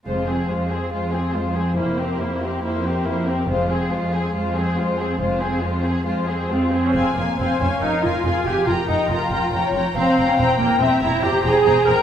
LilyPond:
<<
  \new Staff \with { instrumentName = "Violin section" } { \time 4/4 \key f \minor \tempo 4 = 140 f'8 aes'8 f'8 aes'8 f'8 aes'8 f'8 aes'8 | e'8 g'8 e'8 g'8 e'8 g'8 e'8 g'8 | f'8 aes'8 f'8 aes'8 f'8 aes'8 f'8 aes'8 | f'8 aes'8 f'8 aes'8 f'8 aes'8 f'8 aes'8 |
<f'' aes''>8 <f'' aes''>8 <f'' aes''>8 <f'' aes''>8 <f'' aes''>8 <f'' aes''>8 <f'' aes''>8 <f'' aes''>8 | <g'' bes''>8 <g'' bes''>8 <g'' bes''>8 <g'' bes''>8 <g'' bes''>8 <g'' bes''>8 <g'' bes''>8 <g'' bes''>8 | <g'' bes''>8 <g'' bes''>8 <g'' bes''>8 <g'' bes''>8 <g'' bes''>8 <g'' bes''>8 <g'' bes''>8 <g'' bes''>8 | }
  \new Staff \with { instrumentName = "Violin section" } { \time 4/4 \key f \minor c''8 aes'8 c''8 aes'8 c''8 aes'8 c''8 aes'8 | c''8 bes'8 c''8 bes'8 c''8 bes'8 c''8 bes'8 | c''8 aes'8 c''8 aes'8 c''8 aes'8 c''8 aes'8 | c''8 aes'8 c''8 aes'8 c''8 aes'8 c''8 aes'8 |
aes'4 c''4 bes'4 aes'4 | bes'2 des''4 f''4 | g''4 e''4 c''2 | }
  \new Staff \with { instrumentName = "Viola section" } { \time 4/4 \key f \minor << { r1 | r1 | r1 | r2. c'8. des'16 |
c'8 bes8 c'8 des'8 ees'8 f'4 g'8 | f'8 ees'8 f'4. r8 c'8. des'16 | c'8 bes8 c'8 e'8 g'8 aes'4 bes'8 | } \\ { aes8 c'8 aes8 c'8 aes8 c'8 aes8 c'8 | bes8 c'8 bes8 c'8 bes8 c'8 bes8 c'8 | aes8 c'8 aes8 c'8 aes8 c'8 aes8 c'8 | aes8 c'8 aes8 c'8 aes8 c'8 aes8 c'8 |
r1 | r1 | r1 | } >> }
  \new Staff \with { instrumentName = "Cello section" } { \clef bass \time 4/4 \key f \minor f,4 f,4 f,4 f,4 | f,4 f,4 f,4 f,4 | f,4 f,4 f,4 f,4 | f,4 f,4 f,4 f,4 |
f,8 f,8 f,8 f,8 f,8 f,8 f,8 f,8 | f,8 f,8 f,8 f,8 f,8 f,8 f,8 f,8 | e,8 e,8 e,8 e,8 e,8 e,8 e,8 e,8 | }
  \new Staff \with { instrumentName = "Double bass section" } { \clef bass \time 4/4 \key f \minor f,,4 r2. | f,,4 r2. | f,,4 r2. | f,,4 r2. |
f,,8 f,,8 f,,8 f,,8 f,,8 f,,8 f,,8 f,,8 | f,,8 f,,8 f,,8 f,,8 f,,8 f,,8 f,,8 f,,8 | e,,8 e,,8 e,,8 e,,8 e,,8 e,,8 e,,8 e,,8 | }
>>